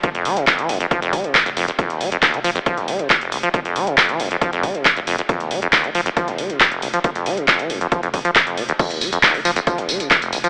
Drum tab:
CC |----------------|----------------|----------------|----------------|
HH |xxoxxxoxxxoxxxox|xxoxxxoxxxoxxxox|xxoxxxoxxxoxxxox|xxoxxxoxxxoxxxox|
TB |----------------|----------------|----------------|----------------|
CP |----x-------x---|----x-------x---|----x-------x---|----x-------x---|
BD |o---o---o-o-o---|o---o---o---o---|o---o---o-o-o---|o---o---o---o---|

CC |----------------|x---------------|
HH |xxoxxxoxxxoxxxox|xxoxxooxxxoxxxox|
TB |----------------|xxxxx-xxx-xxxxxx|
CP |----x-------x---|----x-------x---|
BD |o---o---o-o-o---|o---o---o---o---|